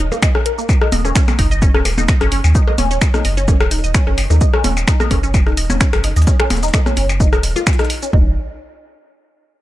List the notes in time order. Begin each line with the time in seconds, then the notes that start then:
0.12 A#3, percussion blips, shaker
0.22 D#5, finger snap, kick, snare, percussion blips, shaker
0.35 C#4, cross-stick
0.46 A#4, closed hi-hat, shaker
0.58 A#3, shaker
0.69 kick, percussion blips, shaker
0.81 D#4, cross-stick
0.92 D#1 D#5, open hi-hat, percussion blips, shaker
1.05 C#4, percussion blips, shaker
1.15 C#4, finger snap, kick, snare, shaker
1.28 cross-stick, percussion blips, shaker
1.39 F#1 D#4, kick, open hi-hat, shaker
1.51 D#5, shaker
1.62 C#4, kick, shaker
1.75 D#1 C#4, cross-stick, snare
1.85 D#1, open hi-hat, percussion blips, shaker
1.98 D#1 D#4, percussion blips, shaker
2.08 D#5, finger snap, kick, snare, shaker
2.21 F#1 C#4, cross-stick, closed hi-hat
2.32 C#4, open hi-hat, shaker
2.44 D#2, percussion blips, shaker
2.55 D#4, kick, shaker
2.68 D#5, cross-stick, percussion blips
2.78 D#1 C#4, open hi-hat, percussion blips, shaker
2.91 C#4, snare, shaker
3.01 finger snap, kick, snare, percussion blips, shaker
3.14 D#4, cross-stick, percussion blips, shaker
3.25 F#1 D#5, open hi-hat, shaker
3.37 C#4, snare, shaker
3.48 C#4, kick, percussion blips, shaker
3.61 D#1, cross-stick, snare, percussion blips
3.71 D#1 D#4, open hi-hat, shaker
3.84 D#1 D#5, shaker
3.94 C#4, finger snap, kick, snare, shaker
4.07 F#1 C#4, cross-stick
4.18 open hi-hat, percussion blips, shaker
4.30 D#2 D#4, percussion blips, shaker
4.41 D#5, kick, shaker
4.54 C#4, cross-stick
4.64 D#1 C#4, open hi-hat, percussion blips, shaker
4.77 percussion blips, shaker
4.88 D#4, finger snap, kick, snare, shaker
5.00 D#5, cross-stick, percussion blips, shaker
5.11 F#1 C#4, kick, open hi-hat, percussion blips, shaker
5.23 C#4, shaker
5.34 kick, percussion blips, shaker
5.47 D#1 D#4, cross-stick, snare
5.57 D#1 D#5, open hi-hat, shaker
5.70 D#1 C#4, percussion blips, shaker
5.81 C#4, finger snap, kick, snare, shaker
5.93 F#1, cross-stick, closed hi-hat, percussion blips
6.04 D#4, snare, open hi-hat, shaker
6.16 D#2 D#5, snare, shaker
6.22 snare, shaker
6.27 C#4, kick, snare, shaker
6.40 C#4, finger snap, cross-stick
6.50 D#1, snare, open hi-hat, percussion blips, shaker
6.57 snare, shaker
6.63 D#4, snare, shaker
6.68 snare, shaker
6.74 D#5, finger snap, kick, snare, percussion blips, shaker
6.86 C#4, cross-stick, percussion blips, shaker
6.97 F#1 C#4, open hi-hat, shaker
7.09 percussion blips, shaker
7.20 D#4, kick, shaker
7.33 D#1 D#5, cross-stick, shaker
7.43 D#1, snare, open hi-hat, shaker
7.56 F4, percussion blips, shaker
7.67 finger snap, kick, snare, percussion blips, shaker
7.73 snare, shaker
7.79 D#4, cross-stick, snare, shaker
7.85 snare, shaker
7.90 open hi-hat, shaker
8.02 C#4, snare, shaker
8.13 D#1 D#4, kick, floor tom